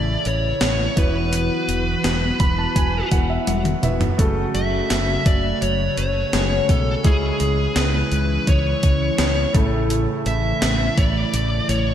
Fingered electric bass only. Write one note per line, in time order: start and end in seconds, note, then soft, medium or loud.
0.00 0.16 A1 medium
0.26 0.52 A1 medium
0.61 0.87 A1 medium
0.97 1.49 E1 medium
1.68 1.94 E1 medium
2.04 2.30 E1 medium
2.40 2.66 E1 medium
2.76 3.02 E1 medium
3.12 3.37 E1 medium
3.48 3.73 E1 medium
3.83 4.09 E1 medium
4.19 4.45 F#1 medium
4.55 4.80 F#1 medium
4.91 5.16 F#1 medium
5.26 5.52 F#1 medium
5.62 5.88 F#1 medium
5.98 6.23 F#1 medium
6.33 6.59 F#1 medium
6.69 6.95 B1 medium
7.05 7.30 C#2 medium
7.41 7.66 C#2 medium
7.76 8.02 C#2 medium
8.12 8.37 C#2 loud
8.47 8.73 C#2 medium
8.83 9.09 C#2 medium
9.19 9.45 C#2 medium
9.55 10.06 A1 medium
10.26 10.52 A1 loud
10.62 10.88 A1 medium
10.98 11.23 A1 medium
11.34 11.59 A1 medium
11.69 11.94 A1 medium